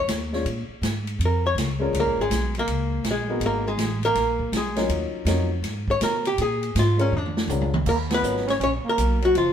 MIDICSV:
0, 0, Header, 1, 7, 480
1, 0, Start_track
1, 0, Key_signature, -6, "minor"
1, 0, Tempo, 370370
1, 590, Time_signature, 4, 2, 24, 8
1, 12350, End_track
2, 0, Start_track
2, 0, Title_t, "Hollow-body jazz guitar"
2, 0, Program_c, 0, 26
2, 1626, Note_on_c, 0, 70, 60
2, 1891, Note_off_c, 0, 70, 0
2, 1899, Note_on_c, 0, 73, 83
2, 1989, Note_off_c, 0, 73, 0
2, 2586, Note_on_c, 0, 58, 63
2, 2594, Note_on_c, 0, 70, 78
2, 2851, Note_off_c, 0, 58, 0
2, 2855, Note_off_c, 0, 70, 0
2, 2868, Note_on_c, 0, 68, 83
2, 2873, Note_on_c, 0, 56, 73
2, 3292, Note_off_c, 0, 68, 0
2, 3295, Note_off_c, 0, 56, 0
2, 3359, Note_on_c, 0, 58, 93
2, 3361, Note_on_c, 0, 70, 87
2, 3935, Note_off_c, 0, 70, 0
2, 3936, Note_off_c, 0, 58, 0
2, 4026, Note_on_c, 0, 56, 58
2, 4030, Note_on_c, 0, 68, 67
2, 4436, Note_off_c, 0, 68, 0
2, 4438, Note_off_c, 0, 56, 0
2, 4482, Note_on_c, 0, 58, 76
2, 4486, Note_on_c, 0, 70, 80
2, 4758, Note_off_c, 0, 70, 0
2, 4759, Note_off_c, 0, 58, 0
2, 4764, Note_on_c, 0, 56, 69
2, 4770, Note_on_c, 0, 68, 72
2, 5200, Note_off_c, 0, 68, 0
2, 5201, Note_off_c, 0, 56, 0
2, 5248, Note_on_c, 0, 70, 112
2, 5261, Note_on_c, 0, 58, 85
2, 5839, Note_off_c, 0, 70, 0
2, 5846, Note_off_c, 0, 58, 0
2, 5921, Note_on_c, 0, 68, 81
2, 5932, Note_on_c, 0, 56, 64
2, 6344, Note_off_c, 0, 68, 0
2, 6349, Note_off_c, 0, 56, 0
2, 7659, Note_on_c, 0, 73, 97
2, 7804, Note_off_c, 0, 73, 0
2, 7818, Note_on_c, 0, 70, 85
2, 8106, Note_off_c, 0, 70, 0
2, 8127, Note_on_c, 0, 67, 92
2, 8278, Note_off_c, 0, 67, 0
2, 8317, Note_on_c, 0, 68, 90
2, 8741, Note_off_c, 0, 68, 0
2, 8801, Note_on_c, 0, 65, 85
2, 9078, Note_off_c, 0, 65, 0
2, 9087, Note_on_c, 0, 61, 81
2, 9238, Note_off_c, 0, 61, 0
2, 9286, Note_on_c, 0, 62, 85
2, 10134, Note_off_c, 0, 62, 0
2, 10223, Note_on_c, 0, 70, 93
2, 10303, Note_off_c, 0, 70, 0
2, 10555, Note_on_c, 0, 71, 103
2, 10977, Note_off_c, 0, 71, 0
2, 11021, Note_on_c, 0, 73, 95
2, 11086, Note_off_c, 0, 73, 0
2, 11192, Note_on_c, 0, 73, 101
2, 11270, Note_off_c, 0, 73, 0
2, 11527, Note_on_c, 0, 70, 100
2, 11989, Note_off_c, 0, 70, 0
2, 11989, Note_on_c, 0, 66, 89
2, 12124, Note_off_c, 0, 66, 0
2, 12153, Note_on_c, 0, 65, 87
2, 12350, Note_off_c, 0, 65, 0
2, 12350, End_track
3, 0, Start_track
3, 0, Title_t, "Grand piano"
3, 0, Program_c, 1, 0
3, 418, Note_on_c, 1, 56, 67
3, 424, Note_on_c, 1, 61, 67
3, 432, Note_on_c, 1, 65, 67
3, 433, Note_on_c, 1, 62, 65
3, 443, Note_on_c, 1, 73, 76
3, 571, Note_off_c, 1, 56, 0
3, 575, Note_off_c, 1, 61, 0
3, 578, Note_off_c, 1, 65, 0
3, 579, Note_off_c, 1, 62, 0
3, 584, Note_off_c, 1, 73, 0
3, 2326, Note_on_c, 1, 56, 80
3, 2332, Note_on_c, 1, 61, 75
3, 2342, Note_on_c, 1, 62, 70
3, 2350, Note_on_c, 1, 65, 66
3, 2354, Note_on_c, 1, 70, 81
3, 2948, Note_off_c, 1, 56, 0
3, 2951, Note_off_c, 1, 61, 0
3, 2956, Note_off_c, 1, 62, 0
3, 2960, Note_off_c, 1, 65, 0
3, 2962, Note_off_c, 1, 70, 0
3, 4258, Note_on_c, 1, 56, 70
3, 4271, Note_on_c, 1, 59, 63
3, 4272, Note_on_c, 1, 63, 59
3, 4277, Note_on_c, 1, 66, 64
3, 4283, Note_on_c, 1, 70, 75
3, 4875, Note_off_c, 1, 56, 0
3, 4881, Note_off_c, 1, 59, 0
3, 4881, Note_off_c, 1, 63, 0
3, 4884, Note_off_c, 1, 66, 0
3, 4887, Note_off_c, 1, 70, 0
3, 6162, Note_on_c, 1, 54, 72
3, 6168, Note_on_c, 1, 61, 63
3, 6178, Note_on_c, 1, 65, 66
3, 6181, Note_on_c, 1, 63, 69
3, 6186, Note_on_c, 1, 70, 75
3, 6787, Note_off_c, 1, 54, 0
3, 6789, Note_off_c, 1, 61, 0
3, 6794, Note_off_c, 1, 65, 0
3, 6796, Note_off_c, 1, 63, 0
3, 6798, Note_off_c, 1, 70, 0
3, 6822, Note_on_c, 1, 61, 65
3, 6823, Note_on_c, 1, 54, 69
3, 6831, Note_on_c, 1, 63, 62
3, 6834, Note_on_c, 1, 65, 58
3, 6844, Note_on_c, 1, 70, 70
3, 7106, Note_off_c, 1, 54, 0
3, 7106, Note_off_c, 1, 61, 0
3, 7110, Note_off_c, 1, 63, 0
3, 7112, Note_off_c, 1, 65, 0
3, 7117, Note_off_c, 1, 70, 0
3, 9036, Note_on_c, 1, 56, 68
3, 9042, Note_on_c, 1, 61, 65
3, 9050, Note_on_c, 1, 62, 66
3, 9053, Note_on_c, 1, 65, 65
3, 9064, Note_on_c, 1, 70, 77
3, 9201, Note_off_c, 1, 56, 0
3, 9204, Note_off_c, 1, 61, 0
3, 9208, Note_off_c, 1, 62, 0
3, 9209, Note_off_c, 1, 65, 0
3, 9215, Note_off_c, 1, 70, 0
3, 9710, Note_on_c, 1, 56, 65
3, 9710, Note_on_c, 1, 61, 58
3, 9710, Note_on_c, 1, 62, 62
3, 9721, Note_on_c, 1, 65, 61
3, 9724, Note_on_c, 1, 70, 73
3, 9990, Note_off_c, 1, 56, 0
3, 9990, Note_off_c, 1, 61, 0
3, 9990, Note_off_c, 1, 62, 0
3, 9996, Note_off_c, 1, 65, 0
3, 9997, Note_off_c, 1, 70, 0
3, 10656, Note_on_c, 1, 61, 49
3, 10658, Note_on_c, 1, 54, 50
3, 10665, Note_on_c, 1, 63, 54
3, 10677, Note_on_c, 1, 65, 46
3, 10679, Note_on_c, 1, 70, 61
3, 10944, Note_off_c, 1, 61, 0
3, 10945, Note_off_c, 1, 54, 0
3, 10948, Note_off_c, 1, 63, 0
3, 10954, Note_off_c, 1, 65, 0
3, 10955, Note_off_c, 1, 70, 0
3, 12350, End_track
4, 0, Start_track
4, 0, Title_t, "Trombone"
4, 0, Program_c, 2, 57
4, 10197, Note_on_c, 2, 58, 86
4, 10336, Note_off_c, 2, 58, 0
4, 10498, Note_on_c, 2, 59, 80
4, 10946, Note_off_c, 2, 59, 0
4, 10982, Note_on_c, 2, 61, 79
4, 11058, Note_off_c, 2, 61, 0
4, 11144, Note_on_c, 2, 61, 89
4, 11286, Note_off_c, 2, 61, 0
4, 11460, Note_on_c, 2, 58, 81
4, 11908, Note_off_c, 2, 58, 0
4, 11945, Note_on_c, 2, 54, 70
4, 12101, Note_off_c, 2, 54, 0
4, 12118, Note_on_c, 2, 53, 82
4, 12350, Note_off_c, 2, 53, 0
4, 12350, End_track
5, 0, Start_track
5, 0, Title_t, "Upright bass"
5, 0, Program_c, 3, 32
5, 104, Note_on_c, 3, 39, 95
5, 572, Note_off_c, 3, 39, 0
5, 587, Note_on_c, 3, 46, 89
5, 878, Note_off_c, 3, 46, 0
5, 1058, Note_on_c, 3, 44, 86
5, 1529, Note_off_c, 3, 44, 0
5, 1542, Note_on_c, 3, 41, 86
5, 2002, Note_off_c, 3, 41, 0
5, 2010, Note_on_c, 3, 37, 90
5, 2485, Note_off_c, 3, 37, 0
5, 2499, Note_on_c, 3, 38, 88
5, 2660, Note_off_c, 3, 38, 0
5, 2660, Note_on_c, 3, 34, 54
5, 2813, Note_off_c, 3, 34, 0
5, 2820, Note_on_c, 3, 32, 58
5, 2973, Note_off_c, 3, 32, 0
5, 2985, Note_on_c, 3, 35, 91
5, 3453, Note_off_c, 3, 35, 0
5, 3468, Note_on_c, 3, 37, 83
5, 3931, Note_off_c, 3, 37, 0
5, 3939, Note_on_c, 3, 34, 92
5, 4399, Note_off_c, 3, 34, 0
5, 4407, Note_on_c, 3, 32, 88
5, 4883, Note_off_c, 3, 32, 0
5, 4893, Note_on_c, 3, 33, 92
5, 5367, Note_off_c, 3, 33, 0
5, 5381, Note_on_c, 3, 34, 84
5, 5851, Note_off_c, 3, 34, 0
5, 5861, Note_on_c, 3, 35, 89
5, 6331, Note_off_c, 3, 35, 0
5, 6337, Note_on_c, 3, 39, 91
5, 6633, Note_off_c, 3, 39, 0
5, 6804, Note_on_c, 3, 41, 96
5, 7282, Note_off_c, 3, 41, 0
5, 7290, Note_on_c, 3, 44, 86
5, 7765, Note_off_c, 3, 44, 0
5, 7788, Note_on_c, 3, 47, 97
5, 8254, Note_off_c, 3, 47, 0
5, 8270, Note_on_c, 3, 46, 86
5, 8735, Note_off_c, 3, 46, 0
5, 8752, Note_on_c, 3, 44, 97
5, 9217, Note_off_c, 3, 44, 0
5, 9223, Note_on_c, 3, 41, 85
5, 9682, Note_off_c, 3, 41, 0
5, 9690, Note_on_c, 3, 37, 95
5, 10166, Note_off_c, 3, 37, 0
5, 10184, Note_on_c, 3, 39, 83
5, 10653, Note_off_c, 3, 39, 0
5, 10661, Note_on_c, 3, 32, 83
5, 11131, Note_off_c, 3, 32, 0
5, 11144, Note_on_c, 3, 34, 82
5, 11437, Note_off_c, 3, 34, 0
5, 11635, Note_on_c, 3, 35, 95
5, 12100, Note_off_c, 3, 35, 0
5, 12120, Note_on_c, 3, 30, 90
5, 12350, Note_off_c, 3, 30, 0
5, 12350, End_track
6, 0, Start_track
6, 0, Title_t, "Muted upright bass strokes"
6, 893, Note_on_c, 9, 29, 35
6, 1022, Note_off_c, 9, 29, 0
6, 6645, Note_on_c, 9, 29, 37
6, 6774, Note_off_c, 9, 29, 0
6, 11467, Note_on_c, 9, 29, 38
6, 11596, Note_off_c, 9, 29, 0
6, 12350, End_track
7, 0, Start_track
7, 0, Title_t, "Drums"
7, 110, Note_on_c, 9, 44, 57
7, 110, Note_on_c, 9, 51, 75
7, 111, Note_on_c, 9, 38, 68
7, 239, Note_off_c, 9, 44, 0
7, 239, Note_off_c, 9, 51, 0
7, 240, Note_off_c, 9, 38, 0
7, 425, Note_on_c, 9, 38, 37
7, 555, Note_off_c, 9, 38, 0
7, 593, Note_on_c, 9, 51, 68
7, 722, Note_off_c, 9, 51, 0
7, 1076, Note_on_c, 9, 44, 65
7, 1076, Note_on_c, 9, 51, 71
7, 1078, Note_on_c, 9, 38, 78
7, 1206, Note_off_c, 9, 44, 0
7, 1206, Note_off_c, 9, 51, 0
7, 1207, Note_off_c, 9, 38, 0
7, 1389, Note_on_c, 9, 51, 50
7, 1519, Note_off_c, 9, 51, 0
7, 1563, Note_on_c, 9, 51, 71
7, 1692, Note_off_c, 9, 51, 0
7, 2046, Note_on_c, 9, 44, 66
7, 2046, Note_on_c, 9, 51, 75
7, 2047, Note_on_c, 9, 38, 74
7, 2175, Note_off_c, 9, 44, 0
7, 2175, Note_off_c, 9, 51, 0
7, 2177, Note_off_c, 9, 38, 0
7, 2520, Note_on_c, 9, 51, 75
7, 2650, Note_off_c, 9, 51, 0
7, 2992, Note_on_c, 9, 44, 61
7, 2992, Note_on_c, 9, 51, 71
7, 2994, Note_on_c, 9, 38, 72
7, 3122, Note_off_c, 9, 44, 0
7, 3122, Note_off_c, 9, 51, 0
7, 3123, Note_off_c, 9, 38, 0
7, 3300, Note_on_c, 9, 51, 47
7, 3429, Note_off_c, 9, 51, 0
7, 3467, Note_on_c, 9, 51, 72
7, 3597, Note_off_c, 9, 51, 0
7, 3945, Note_on_c, 9, 44, 60
7, 3945, Note_on_c, 9, 51, 69
7, 3946, Note_on_c, 9, 38, 75
7, 4075, Note_off_c, 9, 44, 0
7, 4075, Note_off_c, 9, 51, 0
7, 4076, Note_off_c, 9, 38, 0
7, 4419, Note_on_c, 9, 51, 72
7, 4549, Note_off_c, 9, 51, 0
7, 4905, Note_on_c, 9, 44, 51
7, 4905, Note_on_c, 9, 51, 77
7, 4907, Note_on_c, 9, 38, 77
7, 5035, Note_off_c, 9, 44, 0
7, 5035, Note_off_c, 9, 51, 0
7, 5036, Note_off_c, 9, 38, 0
7, 5219, Note_on_c, 9, 51, 48
7, 5349, Note_off_c, 9, 51, 0
7, 5383, Note_on_c, 9, 51, 67
7, 5384, Note_on_c, 9, 38, 37
7, 5512, Note_off_c, 9, 51, 0
7, 5514, Note_off_c, 9, 38, 0
7, 5694, Note_on_c, 9, 36, 60
7, 5823, Note_off_c, 9, 36, 0
7, 5870, Note_on_c, 9, 44, 55
7, 5870, Note_on_c, 9, 51, 68
7, 5871, Note_on_c, 9, 38, 78
7, 5999, Note_off_c, 9, 44, 0
7, 5999, Note_off_c, 9, 51, 0
7, 6000, Note_off_c, 9, 38, 0
7, 6174, Note_on_c, 9, 51, 54
7, 6175, Note_on_c, 9, 38, 65
7, 6303, Note_off_c, 9, 51, 0
7, 6305, Note_off_c, 9, 38, 0
7, 6343, Note_on_c, 9, 51, 70
7, 6472, Note_off_c, 9, 51, 0
7, 6822, Note_on_c, 9, 44, 58
7, 6822, Note_on_c, 9, 51, 74
7, 6823, Note_on_c, 9, 38, 74
7, 6951, Note_off_c, 9, 44, 0
7, 6951, Note_off_c, 9, 51, 0
7, 6952, Note_off_c, 9, 38, 0
7, 7305, Note_on_c, 9, 51, 71
7, 7306, Note_on_c, 9, 38, 39
7, 7434, Note_off_c, 9, 51, 0
7, 7436, Note_off_c, 9, 38, 0
7, 7615, Note_on_c, 9, 36, 65
7, 7745, Note_off_c, 9, 36, 0
7, 7787, Note_on_c, 9, 44, 66
7, 7787, Note_on_c, 9, 51, 76
7, 7788, Note_on_c, 9, 38, 73
7, 7916, Note_off_c, 9, 44, 0
7, 7916, Note_off_c, 9, 51, 0
7, 7918, Note_off_c, 9, 38, 0
7, 8103, Note_on_c, 9, 51, 55
7, 8232, Note_off_c, 9, 51, 0
7, 8269, Note_on_c, 9, 51, 71
7, 8398, Note_off_c, 9, 51, 0
7, 8588, Note_on_c, 9, 51, 49
7, 8718, Note_off_c, 9, 51, 0
7, 8756, Note_on_c, 9, 44, 59
7, 8756, Note_on_c, 9, 51, 70
7, 8757, Note_on_c, 9, 38, 77
7, 8886, Note_off_c, 9, 44, 0
7, 8886, Note_off_c, 9, 51, 0
7, 8887, Note_off_c, 9, 38, 0
7, 9063, Note_on_c, 9, 51, 52
7, 9192, Note_off_c, 9, 51, 0
7, 9239, Note_on_c, 9, 47, 54
7, 9368, Note_off_c, 9, 47, 0
7, 9406, Note_on_c, 9, 47, 60
7, 9535, Note_off_c, 9, 47, 0
7, 9550, Note_on_c, 9, 38, 87
7, 9680, Note_off_c, 9, 38, 0
7, 9710, Note_on_c, 9, 44, 66
7, 9711, Note_on_c, 9, 43, 74
7, 9839, Note_off_c, 9, 44, 0
7, 9841, Note_off_c, 9, 43, 0
7, 9867, Note_on_c, 9, 43, 74
7, 9997, Note_off_c, 9, 43, 0
7, 10027, Note_on_c, 9, 47, 100
7, 10157, Note_off_c, 9, 47, 0
7, 10188, Note_on_c, 9, 49, 74
7, 10191, Note_on_c, 9, 36, 74
7, 10317, Note_off_c, 9, 49, 0
7, 10321, Note_off_c, 9, 36, 0
7, 10503, Note_on_c, 9, 51, 62
7, 10505, Note_on_c, 9, 38, 73
7, 10633, Note_off_c, 9, 51, 0
7, 10634, Note_off_c, 9, 38, 0
7, 10674, Note_on_c, 9, 44, 56
7, 10803, Note_off_c, 9, 44, 0
7, 10840, Note_on_c, 9, 38, 26
7, 10969, Note_off_c, 9, 38, 0
7, 10994, Note_on_c, 9, 51, 51
7, 10996, Note_on_c, 9, 38, 44
7, 11123, Note_off_c, 9, 51, 0
7, 11126, Note_off_c, 9, 38, 0
7, 11157, Note_on_c, 9, 51, 54
7, 11287, Note_off_c, 9, 51, 0
7, 11637, Note_on_c, 9, 44, 65
7, 11637, Note_on_c, 9, 51, 69
7, 11766, Note_off_c, 9, 44, 0
7, 11766, Note_off_c, 9, 51, 0
7, 11953, Note_on_c, 9, 51, 49
7, 12082, Note_off_c, 9, 51, 0
7, 12118, Note_on_c, 9, 51, 65
7, 12248, Note_off_c, 9, 51, 0
7, 12350, End_track
0, 0, End_of_file